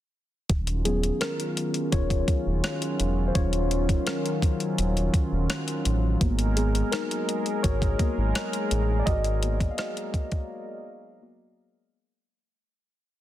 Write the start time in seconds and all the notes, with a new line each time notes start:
0.50 D#1 D#3 F#3 C#4 F4, kick, closed hi-hat
0.67 closed hi-hat
0.85 F#3 B3 C#4 F4 G#4, closed hi-hat
1.03 closed hi-hat
1.21 C#4 A#4, cross-stick, closed hi-hat
1.40 closed hi-hat
1.57 closed hi-hat
1.74 closed hi-hat
1.92 D#1 F4 C#5, kick, closed hi-hat
2.10 kick, closed hi-hat
2.28 kick, closed hi-hat
2.46 D#1
2.64 cross-stick, closed hi-hat
2.82 closed hi-hat
3.00 E1, closed hi-hat
3.28 C5
3.35 D#1 F#3 C#4 F4 C#5, kick, closed hi-hat
3.53 closed hi-hat
3.71 closed hi-hat
3.89 kick, closed hi-hat
4.06 C#4 A#4, cross-stick, closed hi-hat
4.26 closed hi-hat
4.42 kick, closed hi-hat
4.60 closed hi-hat
4.78 D#1, closed hi-hat
4.97 closed hi-hat
5.14 kick, closed hi-hat
5.32 D#1
5.50 cross-stick, closed hi-hat
5.68 closed hi-hat
5.85 A1, closed hi-hat
6.21 G#1 G#3 A#3 B3 F#4 G#4 A#4, kick, closed hi-hat
6.39 closed hi-hat
6.56 B3 G#4, closed hi-hat
6.75 closed hi-hat
6.92 D#4 A#4, cross-stick, closed hi-hat
7.11 closed hi-hat
7.29 closed hi-hat
7.46 closed hi-hat
7.63 G#1 F#4 C#5, kick, closed hi-hat
7.82 kick, closed hi-hat
7.99 A#3 B3 F#4, kick, closed hi-hat
8.18 G#1
8.35 cross-stick, closed hi-hat
8.53 closed hi-hat
8.71 A1, closed hi-hat
8.99 D5
9.06 G#1 F#4 D#5, kick, closed hi-hat
9.24 closed hi-hat
9.43 A#3 B3 F#4, closed hi-hat
9.61 kick, closed hi-hat
9.71 F5
9.78 F#4 D#5, cross-stick, closed hi-hat
9.97 closed hi-hat
10.14 kick, closed hi-hat
10.32 kick, closed hi-hat
11.22 A#3 B3 F#4